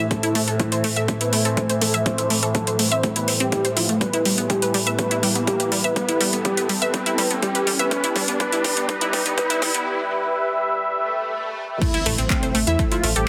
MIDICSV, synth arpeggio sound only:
0, 0, Header, 1, 2, 480
1, 0, Start_track
1, 0, Key_signature, 0, "minor"
1, 0, Tempo, 487805
1, 106, Time_signature, 4, 2, 24, 8
1, 13073, End_track
2, 0, Start_track
2, 0, Title_t, "Synth arpeggio sound"
2, 0, Program_c, 0, 84
2, 106, Note_on_c, 0, 57, 82
2, 151, Note_off_c, 0, 57, 0
2, 229, Note_on_c, 0, 64, 101
2, 337, Note_off_c, 0, 64, 0
2, 346, Note_on_c, 0, 57, 99
2, 421, Note_off_c, 0, 57, 0
2, 469, Note_on_c, 0, 69, 78
2, 541, Note_off_c, 0, 69, 0
2, 587, Note_on_c, 0, 57, 83
2, 661, Note_off_c, 0, 57, 0
2, 709, Note_on_c, 0, 72, 76
2, 752, Note_off_c, 0, 72, 0
2, 827, Note_on_c, 0, 57, 101
2, 871, Note_off_c, 0, 57, 0
2, 949, Note_on_c, 0, 76, 101
2, 1057, Note_off_c, 0, 76, 0
2, 1066, Note_on_c, 0, 57, 81
2, 1111, Note_off_c, 0, 57, 0
2, 1189, Note_on_c, 0, 64, 78
2, 1232, Note_off_c, 0, 64, 0
2, 1307, Note_on_c, 0, 57, 76
2, 1419, Note_off_c, 0, 57, 0
2, 1429, Note_on_c, 0, 69, 79
2, 1501, Note_off_c, 0, 69, 0
2, 1547, Note_on_c, 0, 57, 84
2, 1659, Note_off_c, 0, 57, 0
2, 1669, Note_on_c, 0, 72, 74
2, 1712, Note_off_c, 0, 72, 0
2, 1787, Note_on_c, 0, 57, 98
2, 1832, Note_off_c, 0, 57, 0
2, 1909, Note_on_c, 0, 76, 100
2, 2017, Note_off_c, 0, 76, 0
2, 2026, Note_on_c, 0, 57, 81
2, 2071, Note_off_c, 0, 57, 0
2, 2148, Note_on_c, 0, 64, 74
2, 2192, Note_off_c, 0, 64, 0
2, 2266, Note_on_c, 0, 57, 73
2, 2378, Note_off_c, 0, 57, 0
2, 2388, Note_on_c, 0, 69, 76
2, 2432, Note_off_c, 0, 69, 0
2, 2506, Note_on_c, 0, 57, 80
2, 2619, Note_off_c, 0, 57, 0
2, 2629, Note_on_c, 0, 72, 73
2, 2672, Note_off_c, 0, 72, 0
2, 2747, Note_on_c, 0, 57, 73
2, 2859, Note_off_c, 0, 57, 0
2, 2869, Note_on_c, 0, 76, 101
2, 2977, Note_off_c, 0, 76, 0
2, 2986, Note_on_c, 0, 57, 79
2, 3061, Note_off_c, 0, 57, 0
2, 3109, Note_on_c, 0, 64, 79
2, 3181, Note_off_c, 0, 64, 0
2, 3227, Note_on_c, 0, 72, 73
2, 3301, Note_off_c, 0, 72, 0
2, 3348, Note_on_c, 0, 60, 105
2, 3392, Note_off_c, 0, 60, 0
2, 3466, Note_on_c, 0, 64, 82
2, 3541, Note_off_c, 0, 64, 0
2, 3589, Note_on_c, 0, 72, 74
2, 3661, Note_off_c, 0, 72, 0
2, 3707, Note_on_c, 0, 64, 77
2, 3819, Note_off_c, 0, 64, 0
2, 3828, Note_on_c, 0, 57, 76
2, 3937, Note_off_c, 0, 57, 0
2, 3946, Note_on_c, 0, 55, 73
2, 3991, Note_off_c, 0, 55, 0
2, 4068, Note_on_c, 0, 64, 92
2, 4177, Note_off_c, 0, 64, 0
2, 4186, Note_on_c, 0, 55, 90
2, 4261, Note_off_c, 0, 55, 0
2, 4309, Note_on_c, 0, 59, 73
2, 4381, Note_off_c, 0, 59, 0
2, 4426, Note_on_c, 0, 55, 77
2, 4501, Note_off_c, 0, 55, 0
2, 4549, Note_on_c, 0, 71, 69
2, 4592, Note_off_c, 0, 71, 0
2, 4666, Note_on_c, 0, 55, 94
2, 4711, Note_off_c, 0, 55, 0
2, 4788, Note_on_c, 0, 76, 94
2, 4887, Note_off_c, 0, 76, 0
2, 4906, Note_on_c, 0, 55, 78
2, 4951, Note_off_c, 0, 55, 0
2, 5029, Note_on_c, 0, 64, 96
2, 5137, Note_off_c, 0, 64, 0
2, 5146, Note_on_c, 0, 55, 93
2, 5221, Note_off_c, 0, 55, 0
2, 5268, Note_on_c, 0, 59, 73
2, 5341, Note_off_c, 0, 59, 0
2, 5386, Note_on_c, 0, 55, 76
2, 5461, Note_off_c, 0, 55, 0
2, 5508, Note_on_c, 0, 71, 69
2, 5552, Note_off_c, 0, 71, 0
2, 5626, Note_on_c, 0, 55, 93
2, 5671, Note_off_c, 0, 55, 0
2, 5748, Note_on_c, 0, 76, 96
2, 5847, Note_off_c, 0, 76, 0
2, 5866, Note_on_c, 0, 55, 77
2, 5911, Note_off_c, 0, 55, 0
2, 5988, Note_on_c, 0, 64, 96
2, 6097, Note_off_c, 0, 64, 0
2, 6106, Note_on_c, 0, 55, 96
2, 6181, Note_off_c, 0, 55, 0
2, 6229, Note_on_c, 0, 59, 73
2, 6301, Note_off_c, 0, 59, 0
2, 6346, Note_on_c, 0, 55, 79
2, 6421, Note_off_c, 0, 55, 0
2, 6468, Note_on_c, 0, 71, 72
2, 6512, Note_off_c, 0, 71, 0
2, 6586, Note_on_c, 0, 55, 96
2, 6631, Note_off_c, 0, 55, 0
2, 6708, Note_on_c, 0, 76, 99
2, 6807, Note_off_c, 0, 76, 0
2, 6826, Note_on_c, 0, 55, 79
2, 6871, Note_off_c, 0, 55, 0
2, 6949, Note_on_c, 0, 64, 103
2, 7057, Note_off_c, 0, 64, 0
2, 7067, Note_on_c, 0, 55, 100
2, 7141, Note_off_c, 0, 55, 0
2, 7189, Note_on_c, 0, 59, 77
2, 7261, Note_off_c, 0, 59, 0
2, 7307, Note_on_c, 0, 55, 83
2, 7381, Note_off_c, 0, 55, 0
2, 7429, Note_on_c, 0, 71, 74
2, 7472, Note_off_c, 0, 71, 0
2, 7546, Note_on_c, 0, 55, 97
2, 7591, Note_off_c, 0, 55, 0
2, 7669, Note_on_c, 0, 76, 99
2, 7768, Note_off_c, 0, 76, 0
2, 7786, Note_on_c, 0, 55, 80
2, 7831, Note_off_c, 0, 55, 0
2, 7909, Note_on_c, 0, 64, 100
2, 8017, Note_off_c, 0, 64, 0
2, 8027, Note_on_c, 0, 55, 100
2, 8101, Note_off_c, 0, 55, 0
2, 8149, Note_on_c, 0, 59, 79
2, 8221, Note_off_c, 0, 59, 0
2, 8267, Note_on_c, 0, 55, 83
2, 8312, Note_off_c, 0, 55, 0
2, 8389, Note_on_c, 0, 64, 100
2, 8497, Note_off_c, 0, 64, 0
2, 8506, Note_on_c, 0, 55, 103
2, 8581, Note_off_c, 0, 55, 0
2, 8629, Note_on_c, 0, 59, 77
2, 8701, Note_off_c, 0, 59, 0
2, 8746, Note_on_c, 0, 55, 85
2, 8791, Note_off_c, 0, 55, 0
2, 8869, Note_on_c, 0, 64, 102
2, 8977, Note_off_c, 0, 64, 0
2, 8986, Note_on_c, 0, 55, 102
2, 9061, Note_off_c, 0, 55, 0
2, 9109, Note_on_c, 0, 59, 81
2, 9181, Note_off_c, 0, 59, 0
2, 9226, Note_on_c, 0, 55, 84
2, 9271, Note_off_c, 0, 55, 0
2, 9349, Note_on_c, 0, 64, 97
2, 9457, Note_off_c, 0, 64, 0
2, 9466, Note_on_c, 0, 55, 99
2, 9541, Note_off_c, 0, 55, 0
2, 9589, Note_on_c, 0, 59, 78
2, 9661, Note_off_c, 0, 59, 0
2, 11627, Note_on_c, 0, 57, 86
2, 11671, Note_off_c, 0, 57, 0
2, 11748, Note_on_c, 0, 64, 103
2, 11857, Note_off_c, 0, 64, 0
2, 11866, Note_on_c, 0, 57, 101
2, 11941, Note_off_c, 0, 57, 0
2, 11988, Note_on_c, 0, 60, 80
2, 12061, Note_off_c, 0, 60, 0
2, 12107, Note_on_c, 0, 57, 81
2, 12181, Note_off_c, 0, 57, 0
2, 12229, Note_on_c, 0, 72, 76
2, 12272, Note_off_c, 0, 72, 0
2, 12346, Note_on_c, 0, 57, 101
2, 12391, Note_off_c, 0, 57, 0
2, 12468, Note_on_c, 0, 76, 104
2, 12577, Note_off_c, 0, 76, 0
2, 12586, Note_on_c, 0, 57, 82
2, 12631, Note_off_c, 0, 57, 0
2, 12708, Note_on_c, 0, 64, 80
2, 12752, Note_off_c, 0, 64, 0
2, 12826, Note_on_c, 0, 57, 77
2, 12939, Note_off_c, 0, 57, 0
2, 12948, Note_on_c, 0, 69, 81
2, 13021, Note_off_c, 0, 69, 0
2, 13073, End_track
0, 0, End_of_file